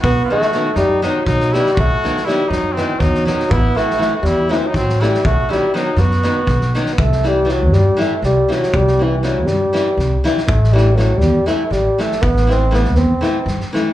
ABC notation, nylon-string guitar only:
X:1
M:7/8
L:1/8
Q:1/4=121
K:none
V:1 name="Nylon-string guitar"
z [^D,^F,B,^D] [D,F,B,D] z [D,F,B,D] z [D,F,B,D] | z [^D,^F,B,^D] [D,F,B,D] z [D,F,B,D] z [D,F,B,D] | z [E,A,CE] [E,A,CE] z [E,A,CE] z [E,A,CE] | z [^D,^F,B,^D] [D,F,B,D] z [D,F,B,D] z [D,F,B,D] |
z [E,G,CE] [E,G,CE] z [E,G,CE] z [E,G,CE] | z [E,G,CE] [E,G,CE] z [E,G,CE] z [E,G,CE] | z [E,A,CE] [E,A,CE] z [E,A,CE] z [E,A,CE] | z [E,A,CE] [E,A,CE] z [E,A,CE] z [E,A,CE] |]